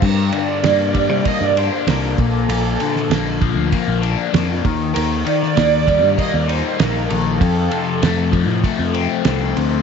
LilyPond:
<<
  \new Staff \with { instrumentName = "String section" } { \time 4/4 \key g \minor \tempo 4 = 98 bes'8 d''4. ees''16 d''16 c''8 bes'8 a'8~ | a'2 r2 | bes'8 d''4. ees''16 d''16 c''8 bes'8 a'8~ | a'2 r2 | }
  \new Staff \with { instrumentName = "Overdriven electric guitar" } { \clef bass \time 4/4 \key g \minor g,8 d8 bes8 g8 bes8 d'8 bes8 bes,8 | bes,8 d8 bes8 f8 bes8 d'8 bes8 ees8 | ees8 ees8 bes8 g8 bes8 ees'8 bes8 ees8 | f,8 c8 a8 f8 a8 c'8 a8 c8 | }
  \new Staff \with { instrumentName = "Picked electric bass" } { \clef bass \time 4/4 \key g \minor g,8 r8 g,8. c16 r16 g,8 r16 c,8 bes,,8 | bes,,8 r8 bes,,8. d,16 r16 bes,,8 r16 f,8 ees,8 | ees,8 r8 ees,8. g,16 r16 ees,8 r16 bes,,8 bes,,8 | f,8 r8 f,8. a,16 r16 f,8 r16 c,8 d,8 | }
  \new DrumStaff \with { instrumentName = "Drums" } \drummode { \time 4/4 <cymc bd>8 cymr8 <cymr sn>8 <bd cymr>8 <bd cymr>8 cymr8 <cymr sn>8 <bd cymr>8 | cymr8 cymr16 sn16 <cymr sn>8 <bd cymr>8 <bd cymr>8 cymr8 <cymr sn>8 <bd cymr>8 | cymr8 cymr16 sn16 <cymr sn>8 <bd cymr>8 <bd cymr>8 cymr8 <cymr sn>8 cymr8 | <bd cymr>8 cymr8 <cymr sn>8 <bd cymr>8 <bd cymr>8 cymr8 <cymr sn>8 cymr8 | }
>>